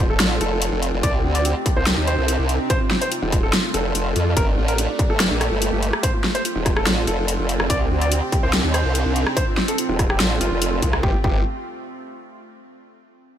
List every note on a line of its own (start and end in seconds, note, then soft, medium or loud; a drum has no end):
0.00 0.18 D#1 medium
0.00 1.00 A3 medium
0.00 4.33 C4 medium
0.00 1.02 F4 medium
0.10 0.17 A4 medium
0.20 0.39 A1 medium
0.20 0.27 F4 medium
0.20 snare loud
0.20 closed hi-hat medium
0.31 0.38 F4 medium
0.41 0.71 F1 loud
0.41 0.95 A4 medium
0.41 closed hi-hat medium
0.62 closed hi-hat medium
0.72 0.91 F1 loud
0.82 closed hi-hat medium
0.93 1.02 F1 medium
1.03 1.23 C2 loud
1.03 2.68 C3 medium
1.03 2.68 D4 medium
1.03 2.68 D#4 medium
1.03 2.68 G4 medium
1.03 1.11 D5 loud
1.03 kick loud
1.03 closed hi-hat medium
1.14 1.21 G4 medium
1.24 1.54 D2 loud
1.24 1.32 G4 medium
1.35 1.42 D5 medium
1.35 closed hi-hat soft
1.45 1.52 G4 medium
1.45 closed hi-hat medium
1.56 1.63 G4 medium
1.66 1.73 G4 medium
1.66 kick loud
1.66 closed hi-hat medium
1.76 1.96 C2 medium
1.76 1.83 C5 medium
1.87 1.94 G4 medium
1.87 snare loud
1.87 closed hi-hat medium
1.97 2.16 D#2 loud
1.97 2.04 G4 medium
2.07 2.62 C5 medium
2.07 closed hi-hat medium
2.18 2.37 C2 loud
2.28 closed hi-hat medium
2.39 2.58 C2 loud
2.49 closed hi-hat medium
2.70 7.66 A3 medium
2.70 4.35 F4 medium
2.70 2.77 C5 loud
2.70 kick loud
2.70 closed hi-hat medium
2.81 2.88 F4 medium
2.91 2.98 F4 medium
2.91 snare medium
3.02 3.08 C5 medium
3.02 closed hi-hat medium
3.12 3.19 F4 medium
3.12 closed hi-hat medium
3.22 3.52 D#1 medium
3.22 3.29 F4 medium
3.32 3.40 F4 medium
3.32 kick loud
3.32 closed hi-hat soft
3.43 3.50 A4 medium
3.53 3.61 F4 medium
3.53 snare loud
3.53 closed hi-hat medium
3.64 3.71 F4 medium
3.74 3.93 F1 loud
3.74 4.29 A4 medium
3.74 closed hi-hat soft
3.95 4.14 F1 medium
3.95 closed hi-hat medium
4.16 4.35 F2 medium
4.16 closed hi-hat soft
4.36 4.56 G1 medium
4.36 6.02 A#3 medium
4.36 6.02 G4 medium
4.36 4.44 A#4 loud
4.36 kick loud
4.36 closed hi-hat medium
4.47 4.54 D4 medium
4.57 4.87 A1 loud
4.57 4.65 D4 medium
4.68 4.75 A#4 medium
4.68 closed hi-hat soft
4.78 4.86 D4 medium
4.78 closed hi-hat medium
4.89 4.96 D4 medium
4.99 5.06 D4 medium
4.99 kick loud
4.99 closed hi-hat soft
5.10 5.29 G1 loud
5.10 5.17 A4 medium
5.20 5.27 D4 medium
5.20 snare loud
5.20 closed hi-hat medium
5.31 5.50 A#1 loud
5.31 5.38 D4 medium
5.41 5.95 A4 medium
5.41 cross-stick medium
5.41 closed hi-hat medium
5.51 5.71 G1 loud
5.62 closed hi-hat medium
5.72 5.91 G1 loud
5.83 closed hi-hat medium
5.93 cross-stick medium
6.03 10.99 C4 medium
6.03 7.68 F4 medium
6.03 6.11 C5 medium
6.03 kick loud
6.03 closed hi-hat medium
6.14 6.21 F4 medium
6.24 6.31 F4 medium
6.24 snare medium
6.35 6.42 C5 loud
6.35 closed hi-hat medium
6.45 6.52 F4 medium
6.45 closed hi-hat medium
6.56 6.85 D#1 medium
6.56 6.63 F4 medium
6.66 6.73 F4 medium
6.66 kick loud
6.66 cross-stick medium
6.66 closed hi-hat medium
6.77 6.83 A4 medium
6.77 cross-stick medium
6.87 7.06 A1 loud
6.87 6.94 F4 medium
6.87 snare loud
6.87 closed hi-hat medium
6.97 7.04 F4 medium
7.07 7.37 F1 medium
7.07 7.62 A4 medium
7.07 closed hi-hat medium
7.28 closed hi-hat medium
7.39 7.58 F1 medium
7.49 closed hi-hat medium
7.60 7.68 F1 loud
7.60 cross-stick medium
7.70 7.89 C2 loud
7.70 9.35 C3 medium
7.70 9.35 D4 medium
7.70 9.35 D#4 medium
7.70 9.35 G4 medium
7.70 7.77 D5 loud
7.70 kick loud
7.70 closed hi-hat medium
7.81 7.88 G4 medium
7.91 8.21 D2 loud
7.91 7.98 G4 medium
8.01 8.08 D5 medium
8.01 closed hi-hat medium
8.12 8.19 G4 medium
8.12 closed hi-hat medium
8.22 8.29 G4 medium
8.32 8.40 G4 medium
8.32 kick loud
8.32 closed hi-hat medium
8.43 8.62 C2 medium
8.43 8.50 C5 medium
8.53 8.61 G4 medium
8.53 snare loud
8.53 closed hi-hat medium
8.64 8.83 D#2 loud
8.64 8.71 G4 medium
8.74 9.29 C5 medium
8.74 cross-stick medium
8.74 closed hi-hat medium
8.85 9.04 C2 loud
8.95 closed hi-hat medium
9.06 9.25 C2 medium
9.16 closed hi-hat medium
9.27 cross-stick medium
9.37 11.02 A3 medium
9.37 11.02 F4 medium
9.37 9.44 C5 loud
9.37 kick loud
9.37 closed hi-hat medium
9.47 9.54 F4 medium
9.57 9.65 F4 medium
9.57 snare medium
9.68 9.75 A4 medium
9.68 closed hi-hat medium
9.78 9.86 F4 medium
9.78 closed hi-hat medium
9.89 10.18 D#1 loud
9.89 9.96 F4 medium
9.99 10.06 F4 medium
9.99 kick loud
9.99 cross-stick soft
9.99 closed hi-hat medium
10.10 10.17 G4 medium
10.10 cross-stick medium
10.20 10.39 A1 loud
10.20 10.27 F4 medium
10.20 snare loud
10.20 closed hi-hat medium
10.31 10.38 F4 medium
10.41 10.50 G1 loud
10.41 10.95 F4 medium
10.41 closed hi-hat medium
10.51 10.81 F1 loud
10.62 closed hi-hat medium
10.82 11.02 C2 medium
10.82 kick medium
10.82 closed hi-hat medium
10.93 cross-stick medium
11.03 11.15 G1 loud
11.03 11.15 G4 medium
11.03 kick loud
11.24 11.44 G1 loud
11.24 11.40 G4 medium
11.24 kick loud